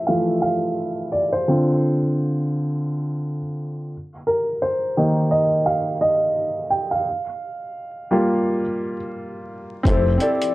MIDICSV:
0, 0, Header, 1, 6, 480
1, 0, Start_track
1, 0, Key_signature, -1, "major"
1, 0, Tempo, 697674
1, 1019, Time_signature, 4, 2, 24, 8
1, 7255, End_track
2, 0, Start_track
2, 0, Title_t, "Soft synth lead"
2, 0, Program_c, 0, 80
2, 6787, Note_on_c, 0, 72, 113
2, 6999, Note_off_c, 0, 72, 0
2, 7029, Note_on_c, 0, 74, 91
2, 7255, Note_off_c, 0, 74, 0
2, 7255, End_track
3, 0, Start_track
3, 0, Title_t, "Ambient pad"
3, 0, Program_c, 1, 92
3, 6778, Note_on_c, 1, 69, 90
3, 6779, Note_on_c, 1, 67, 72
3, 6780, Note_on_c, 1, 53, 69
3, 6781, Note_on_c, 1, 76, 70
3, 7255, Note_off_c, 1, 53, 0
3, 7255, Note_off_c, 1, 67, 0
3, 7255, Note_off_c, 1, 69, 0
3, 7255, Note_off_c, 1, 76, 0
3, 7255, End_track
4, 0, Start_track
4, 0, Title_t, "Felt piano"
4, 0, Program_c, 2, 0
4, 0, Control_c, 2, 64, 127
4, 0, Note_on_c, 2, 53, 50
4, 0, Note_on_c, 2, 57, 43
4, 0, Note_on_c, 2, 64, 50
4, 0, Note_on_c, 2, 69, 82
4, 0, Note_on_c, 2, 72, 73
4, 0, Note_on_c, 2, 76, 87
4, 47, Note_on_c, 2, 77, 88
4, 55, Note_off_c, 2, 53, 0
4, 55, Note_on_c, 2, 53, 44
4, 56, Note_off_c, 2, 57, 0
4, 56, Note_on_c, 2, 57, 43
4, 59, Note_on_c, 2, 52, 49
4, 272, Note_off_c, 2, 53, 0
4, 273, Note_off_c, 2, 57, 0
4, 275, Note_off_c, 2, 52, 0
4, 278, Note_off_c, 2, 77, 0
4, 288, Note_on_c, 2, 77, 86
4, 746, Note_off_c, 2, 77, 0
4, 770, Note_on_c, 2, 74, 80
4, 804, Note_off_c, 2, 74, 0
4, 912, Note_off_c, 2, 72, 0
4, 912, Note_on_c, 2, 72, 76
4, 1017, Note_on_c, 2, 50, 51
4, 1021, Note_on_c, 2, 60, 42
4, 1025, Note_on_c, 2, 65, 55
4, 1026, Control_c, 2, 64, 0
4, 1031, Note_off_c, 2, 64, 0
4, 1031, Note_off_c, 2, 76, 0
4, 1033, Note_off_c, 2, 69, 0
4, 1155, Control_c, 2, 64, 127
4, 1353, Note_off_c, 2, 50, 0
4, 1355, Note_off_c, 2, 60, 0
4, 1357, Note_off_c, 2, 65, 0
4, 2328, Note_off_c, 2, 72, 0
4, 2709, Control_c, 2, 64, 0
4, 2829, Control_c, 2, 64, 127
4, 2936, Note_on_c, 2, 70, 71
4, 3178, Note_on_c, 2, 72, 65
4, 3185, Note_off_c, 2, 70, 0
4, 3420, Note_on_c, 2, 51, 54
4, 3425, Note_on_c, 2, 58, 49
4, 3429, Note_on_c, 2, 63, 63
4, 3631, Note_off_c, 2, 72, 0
4, 3653, Note_on_c, 2, 75, 84
4, 3755, Note_off_c, 2, 51, 0
4, 3757, Note_off_c, 2, 58, 0
4, 3759, Note_off_c, 2, 63, 0
4, 3894, Note_on_c, 2, 77, 94
4, 3903, Note_off_c, 2, 75, 0
4, 3949, Note_off_c, 2, 77, 0
4, 4135, Note_on_c, 2, 75, 95
4, 4612, Note_on_c, 2, 79, 94
4, 4632, Note_off_c, 2, 75, 0
4, 4755, Note_on_c, 2, 77, 83
4, 4761, Note_off_c, 2, 79, 0
4, 4867, Control_c, 2, 64, 0
4, 4973, Control_c, 2, 64, 127
4, 5578, Note_on_c, 2, 55, 53
4, 5580, Note_on_c, 2, 58, 49
4, 5585, Note_on_c, 2, 65, 61
4, 5913, Note_off_c, 2, 55, 0
4, 5915, Note_off_c, 2, 58, 0
4, 5918, Note_off_c, 2, 65, 0
4, 6170, Note_off_c, 2, 77, 0
4, 6765, Note_on_c, 2, 60, 68
4, 6776, Note_on_c, 2, 64, 67
4, 6787, Note_on_c, 2, 67, 70
4, 6788, Control_c, 2, 64, 0
4, 6798, Note_on_c, 2, 69, 83
4, 6909, Control_c, 2, 64, 127
4, 6980, Note_off_c, 2, 60, 0
4, 6986, Note_off_c, 2, 64, 0
4, 6991, Note_off_c, 2, 67, 0
4, 6997, Note_off_c, 2, 69, 0
4, 7002, Note_on_c, 2, 60, 63
4, 7013, Note_on_c, 2, 64, 55
4, 7023, Note_on_c, 2, 67, 55
4, 7035, Note_on_c, 2, 69, 69
4, 7255, Note_off_c, 2, 60, 0
4, 7255, Note_off_c, 2, 64, 0
4, 7255, Note_off_c, 2, 67, 0
4, 7255, Note_off_c, 2, 69, 0
4, 7255, End_track
5, 0, Start_track
5, 0, Title_t, "Fretless electric bass"
5, 0, Program_c, 3, 35
5, 6784, Note_on_c, 3, 29, 109
5, 6999, Note_off_c, 3, 29, 0
5, 7255, End_track
6, 0, Start_track
6, 0, Title_t, "Drums"
6, 6779, Note_on_c, 9, 36, 111
6, 6786, Note_on_c, 9, 42, 77
6, 6847, Note_off_c, 9, 36, 0
6, 6855, Note_off_c, 9, 42, 0
6, 7020, Note_on_c, 9, 42, 56
6, 7088, Note_off_c, 9, 42, 0
6, 7166, Note_on_c, 9, 42, 54
6, 7235, Note_off_c, 9, 42, 0
6, 7255, End_track
0, 0, End_of_file